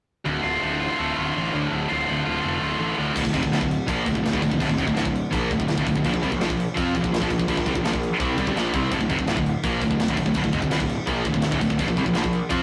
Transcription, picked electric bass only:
0.26 0.38 D1 medium
0.44 0.56 D1 medium
0.63 0.88 D1 medium
1.00 1.12 D1 medium
1.18 1.30 D1 medium
1.37 1.49 A1 medium
1.54 1.66 D2 medium
1.73 1.85 D1 medium
1.92 2.04 D1 medium
2.10 2.21 D1 medium
2.27 2.39 D1 medium
2.44 2.57 F1 medium
2.62 2.74 D1 medium
2.80 2.92 A1 medium
2.98 3.11 D2 medium
3.16 3.24 D1 medium
3.26 3.34 D1 medium
3.34 3.42 F1 medium
3.43 3.51 D1 medium
3.51 3.60 D1 medium
3.61 3.78 D1 medium
3.88 4.05 A#1 medium
4.06 4.15 D1 medium
4.16 4.24 D1 medium
4.25 4.33 D1 medium
4.33 4.42 D1 medium
4.43 4.51 D1 medium
4.51 4.60 D1 medium
4.60 4.69 D1 medium
4.70 4.78 D1 medium
4.78 4.86 F1 loud
4.87 4.96 D1 medium
4.97 5.04 D1 loud
5.05 5.22 D1 medium
5.33 5.50 A#1 medium
5.51 5.59 D1 medium
5.60 5.68 D1 medium
5.69 5.77 D1 medium
5.78 5.86 D1 medium
5.86 5.95 D1 medium
5.96 6.04 D1 medium
6.05 6.13 A#1 medium
6.14 6.22 A#1 medium
6.23 6.31 C2 medium
6.32 6.40 A#1 medium
6.43 6.49 A#1 medium
6.50 6.67 A#1 medium
6.77 6.94 F2 medium
6.95 7.03 A#1 medium
7.04 7.12 A#1 medium
7.13 7.21 A#1 medium
7.22 7.30 A#1 medium
7.30 7.39 A#1 medium
7.39 7.47 A#1 medium
7.48 7.57 A#1 medium
7.58 7.66 A#1 medium
7.67 7.75 C2 loud
7.76 7.84 A#1 medium
7.84 7.93 A#1 medium
7.94 8.10 A#1 medium
8.20 8.37 C2 medium
8.38 8.46 C2 medium
8.48 8.54 C2 loud
8.55 8.72 A#1 medium
8.75 8.91 C2 medium
8.92 9.00 D1 medium
9.01 9.09 D1 medium
9.10 9.18 F1 medium
9.19 9.26 D1 medium
9.26 9.36 D1 loud
9.37 9.54 D1 medium
9.64 9.81 A#1 medium
9.82 9.91 D1 medium
9.91 10.00 D1 medium
10.01 10.08 D1 medium
10.09 10.17 D1 medium
10.18 10.26 D1 medium
10.26 10.34 D1 medium
10.35 10.43 D1 medium
10.44 10.52 D1 medium
10.53 10.62 F1 medium
10.63 10.71 D1 medium
10.74 10.80 D1 loud
10.80 10.97 D1 medium
11.07 11.24 A#1 medium
11.25 11.34 D1 medium
11.34 11.43 D1 medium
11.45 11.51 D1 medium
11.52 11.61 D1 medium
11.62 11.70 D1 medium
11.70 11.79 D1 medium
11.80 11.87 A#1 medium
11.88 11.97 A#1 medium
11.97 12.05 C2 loud
12.06 12.14 A#1 medium
12.16 12.23 A#1 medium
12.24 12.41 A#1 medium
12.51 12.63 F2 medium

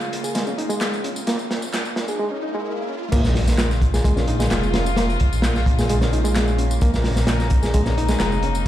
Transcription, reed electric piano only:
0.24 0.32 G#4 medium
0.35 0.43 G#3 loud
0.47 0.55 C#4 medium
0.58 0.67 D#4 medium
0.70 1.03 G#3 loud
1.04 1.09 C#4 medium
1.27 1.36 A#3 loud
2.09 2.16 G#4 medium
2.19 2.28 G#3 loud
2.32 2.40 C#4 medium
2.42 2.51 D#4 medium
2.55 2.88 G#3 loud
2.89 2.94 C#4 medium
3.12 3.20 A#3 loud
3.94 4.01 G#4 medium
4.05 4.13 G#3 loud
4.17 4.24 C#4 medium
4.28 4.36 D#4 medium
4.40 4.73 G#3 loud
4.74 4.79 C#4 medium
4.97 5.05 A#3 loud
5.79 5.86 G#4 medium
5.90 5.98 G#3 loud
6.02 6.09 C#4 medium
6.13 6.21 D#4 medium
6.25 6.57 G#3 loud
6.59 6.64 C#4 medium
6.82 6.90 A#3 loud
7.63 7.71 G#4 medium
7.74 7.82 G#3 loud
7.86 7.94 C#4 medium
7.98 8.06 D#4 medium
8.09 8.42 G#3 loud
8.43 8.48 C#4 medium

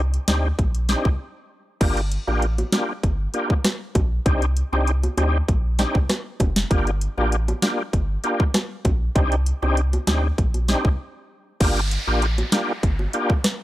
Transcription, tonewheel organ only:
0.28 0.48 C4 medium
0.28 0.48 D4 medium
0.28 0.48 D#4 medium
0.28 0.48 G4 medium
0.89 1.09 C4 medium
0.89 1.09 D4 medium
0.89 1.09 D#4 medium
0.89 1.09 G4 medium
1.81 2.01 A#3 medium
1.81 2.01 D4 medium
1.81 2.01 F4 medium
1.81 2.01 G4 loud
2.27 2.46 A#3 medium
2.27 2.46 D4 medium
2.27 2.46 F4 medium
2.27 2.47 G4 medium
2.73 2.93 A#3 medium
2.73 2.93 D4 medium
2.73 2.93 F4 medium
2.73 2.93 G4 medium
3.34 3.54 A#3 medium
3.34 3.54 D4 medium
3.34 3.54 F4 medium
3.34 3.54 G4 medium
4.26 4.46 C4 medium
4.26 4.46 D4 medium
4.26 4.46 D#4 medium
4.26 4.46 G4 loud
4.73 4.91 C4 medium
4.73 4.91 D4 medium
4.73 4.92 D#4 medium
4.73 4.92 G4 medium
5.17 5.38 C4 medium
5.17 5.38 D4 medium
5.17 5.38 D#4 medium
5.17 5.38 G4 medium
5.79 5.99 C4 medium
5.79 5.99 D4 medium
5.79 5.99 D#4 medium
5.79 5.99 G4 medium
6.70 6.91 A#3 medium
6.70 6.91 D4 medium
6.70 6.91 F4 medium
6.70 6.91 G4 loud
7.17 7.36 A#3 medium
7.17 7.36 D4 medium
7.17 7.36 F4 medium
7.17 7.37 G4 medium
7.62 7.83 A#3 medium
7.62 7.83 D4 medium
7.62 7.83 F4 medium
7.62 7.83 G4 medium
8.24 8.44 A#3 medium
8.24 8.44 D4 medium
8.24 8.44 F4 medium
8.24 8.44 G4 medium
9.15 9.36 C4 loud
9.15 9.36 D4 medium
9.15 9.36 D#4 medium
9.15 9.36 G4 loud
9.62 9.81 C4 medium
9.62 9.81 D4 medium
9.62 9.81 D#4 medium
9.62 9.81 G4 medium
10.07 10.28 C4 medium
10.07 10.28 D4 medium
10.07 10.28 D#4 medium
10.07 10.28 G4 medium
10.68 10.89 C4 medium
10.68 10.89 D4 medium
10.68 10.89 D#4 medium
10.68 10.89 G4 medium
11.60 11.80 A#3 medium
11.60 11.81 D4 medium
11.60 11.81 F4 medium
11.60 11.81 G4 loud
12.07 12.26 A#3 medium
12.07 12.26 D4 medium
12.07 12.26 F4 medium
12.07 12.26 G4 medium
12.52 12.72 A#3 medium
12.52 12.73 D4 medium
12.52 12.73 F4 medium
12.52 12.73 G4 medium
13.14 13.34 A#3 medium
13.14 13.34 D4 medium
13.14 13.34 F4 medium
13.14 13.34 G4 medium

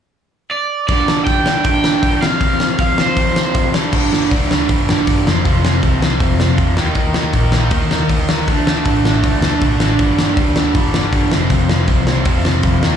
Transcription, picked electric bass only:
3.94 4.28 G1 medium
4.32 4.66 D2 medium
4.70 4.87 G1 medium
4.90 5.06 G1 medium
5.08 5.28 G1 medium
5.28 5.44 F1 medium
5.46 5.80 F1 medium
5.83 6.17 C2 medium
6.21 6.38 F1 medium
6.40 6.57 F1 medium
6.58 6.76 F2 medium
6.78 6.95 D#2 medium
6.96 7.31 D#2 medium
7.34 7.68 A#1 medium
7.71 7.89 D#2 medium
7.91 8.08 D#2 medium
8.10 8.44 D#2 medium
8.48 8.82 D2 medium
8.86 9.20 A1 medium
9.24 9.41 D2 medium
9.43 9.60 D2 medium
9.62 9.96 A1 medium
9.99 10.33 G1 medium
10.37 10.71 D2 medium
10.75 10.92 G1 medium
10.97 11.12 G1 medium
11.13 11.30 G1 medium
11.33 11.50 F1 medium
11.51 11.85 F1 medium
11.88 12.23 C2 medium
12.26 12.43 F1 medium
12.45 12.62 F1 medium
12.64 12.81 F1 medium
12.84 12.97 D#2 medium

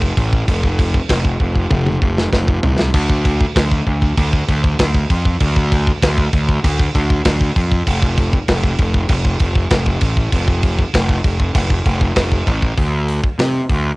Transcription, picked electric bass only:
0.00 0.11 F1 medium
0.17 0.42 A1 medium
0.48 0.98 F1 medium
1.10 1.35 F1 loud
1.40 1.65 F1 medium
1.71 1.96 F1 loud
2.02 2.27 F1 medium
2.33 2.58 F1 medium
2.63 2.88 C2 medium
2.94 3.44 D2 medium
3.56 3.81 D2 medium
3.87 4.12 D2 medium
4.17 4.42 D2 medium
4.49 4.74 D2 medium
4.79 5.04 D2 loud
5.10 5.35 F2 medium
5.41 5.91 D2 medium
6.02 6.27 D2 medium
6.33 6.58 D2 medium
6.64 6.89 D2 loud
6.95 7.20 D2 medium
7.25 7.50 D2 medium
7.56 7.81 F2 medium
7.87 8.37 F1 medium
8.48 8.73 F1 medium
8.79 9.04 F1 medium
9.09 9.34 F1 loud
9.40 9.65 F1 medium
9.71 9.96 F1 medium
10.02 10.27 A1 medium
10.32 10.82 F1 medium
10.94 11.19 F1 loud
11.24 11.49 F1 medium
11.55 11.80 F1 loud
11.86 12.11 F1 loud
12.16 12.41 F1 medium
12.47 12.72 A1 medium
12.78 13.20 D2 medium
13.39 13.60 C3 medium
13.70 13.91 D2 medium

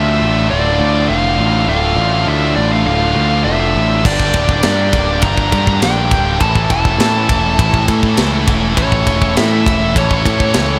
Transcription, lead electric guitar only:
0.00 0.46 E5 medium
0.50 1.08 D5 medium
1.09 1.68 F5 medium
1.69 2.28 F5 loud
2.28 2.55 E5 medium
2.56 2.71 D5 medium
2.73 2.85 F5 medium
2.87 3.42 F5 medium
3.44 4.06 E5 medium
4.06 4.60 D5 loud
4.65 5.25 D5 medium
5.22 5.82 A#5 loud
5.83 6.41 G5 loud
6.41 6.70 A5 loud
6.71 7.85 A5 loud
8.78 9.33 C#5 loud
9.38 9.92 E5 loud
9.98 10.79 C#5 medium

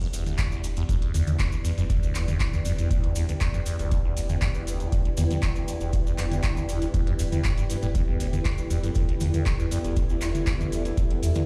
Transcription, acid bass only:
0.01 0.08 F2 loud
0.13 0.24 E2 medium
0.26 0.40 D2 medium
0.39 0.49 E2 loud
0.52 0.62 E2 medium
0.64 0.68 D2 medium
0.77 0.84 E2 loud
0.89 0.96 F2 loud
1.02 1.12 E2 medium
1.14 1.29 D2 medium
1.27 1.37 E2 loud
1.39 1.50 E2 medium
1.52 1.56 D2 medium
1.65 1.72 E2 medium
1.78 1.84 F2 loud
1.90 2.01 E2 medium
2.03 2.17 D2 medium
2.15 2.26 E2 loud
2.28 2.38 E2 medium
2.40 2.45 D2 medium
2.53 2.60 E2 loud
2.66 2.73 F2 loud
2.79 2.89 E2 medium
2.91 3.05 D2 medium
3.04 3.14 E2 loud
3.16 3.27 E2 medium
3.29 3.33 D2 medium
3.41 3.48 E2 loud
3.54 3.61 F2 loud
3.66 3.77 E2 medium
3.79 3.93 D2 medium
3.91 4.02 E2 loud
4.05 4.15 E2 medium
4.17 4.21 D2 medium
4.30 4.36 E2 loud
4.42 4.49 F2 loud
4.55 4.65 E2 medium
4.67 4.82 D2 medium
4.80 4.90 E2 loud
4.92 5.03 E2 medium
5.05 5.09 D2 medium
5.18 5.25 E2 loud
5.31 5.37 F2 loud
5.43 5.54 E2 medium
5.56 5.69 D2 medium
5.68 5.79 E2 medium
5.81 5.91 E2 medium
6.06 6.13 E2 loud
6.18 6.26 F2 loud
6.31 6.41 E2 medium
6.44 6.58 D2 medium
6.57 6.67 E2 loud
6.69 6.80 E2 medium
6.82 6.86 D2 medium
6.94 7.01 E2 loud
7.07 7.14 F2 loud
7.19 7.24 E2 loud
7.32 7.46 E2 medium
7.44 7.52 G2 loud
7.57 7.64 G2 medium
7.70 7.77 G2 medium
7.83 7.87 A2 loud
7.95 8.02 F2 loud
8.08 8.18 E2 medium
8.20 8.27 D2 medium
8.33 8.40 E2 medium
8.45 8.56 E2 medium
8.58 8.62 D2 medium
8.70 8.78 E2 loud
8.84 8.90 F2 loud
8.96 9.06 E2 medium
9.09 9.15 D2 medium
9.21 9.28 E2 medium
9.34 9.44 E2 medium
9.59 9.66 E2 loud
9.71 9.79 F2 loud
9.84 9.94 E2 medium
9.97 10.04 D2 medium
10.10 10.16 E2 medium
10.22 10.33 E2 medium
10.35 10.39 D2 medium
10.47 10.54 E2 loud
10.60 10.67 F2 loud
10.72 10.83 E2 medium
10.85 10.92 D2 medium
10.97 11.05 E2 medium
11.11 11.21 E2 medium
11.23 11.27 D2 medium
11.36 11.42 E2 loud

